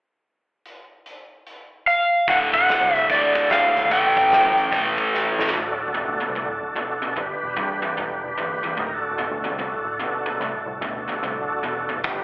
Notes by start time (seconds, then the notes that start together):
0.66 closed hi-hat
1.06 closed hi-hat
1.47 closed hi-hat
1.87 F5, closed hi-hat
2.28 D1 D2 A2 D3 F#5, kick, closed hi-hat
2.53 D1 F#5, kick, closed hi-hat
2.69 snare, closed hi-hat
2.81 C2
2.94 E5, closed hi-hat
3.10 A1 D2 A2 D3 D5, kick, closed hi-hat
3.35 kick, closed hi-hat
3.50 F5, snare, closed hi-hat
3.77 D2, closed hi-hat
3.84 C2
3.90 A1 A2 E3 A3 G5, kick, closed hi-hat
4.16 A1, kick, closed hi-hat
4.32 snare, closed hi-hat
4.45 F#2
4.58 closed hi-hat
4.72 E1 A2 E3 A3, kick, closed hi-hat
4.98 kick, closed hi-hat
5.14 snare
5.39 A2, snare
5.47 G1, snare
5.53 D1 D2 A2 D4 F#4 A4
5.88 D1
5.95 D2 B2
6.08 D2
6.21 D2 B2
6.29 C2
6.35 D2 A2
6.49 D1
6.61 D1
6.76 D2 B2
7.02 D2 B2
7.16 G1 G2 D3 D4 G4 B4
7.43 E1
7.57 G2 E3
7.83 G2 E3
7.98 E1 G2 D3
8.24 E1
8.38 G1 G2 E3
8.63 G2 E3
8.77 D1 D2 A2 D#4 G4 A#4
8.94 D4 F#4 A4
9.11 D1
9.18 D2 B2
9.31 D2
9.44 D2 B2
9.52 C2
9.59 D2 A2
9.72 D1
9.85 D1
9.99 D2 B2
10.26 D2 B2
10.40 C2 D2 A2
10.66 C2
10.81 D2 B2
11.08 D2 B2
11.23 C2 D2 A2
11.49 D1
11.63 E1 D2 B2
11.89 F#1 D2 B2
12.04 G1 G2 D3 D4 G4 B4, kick, open hi-hat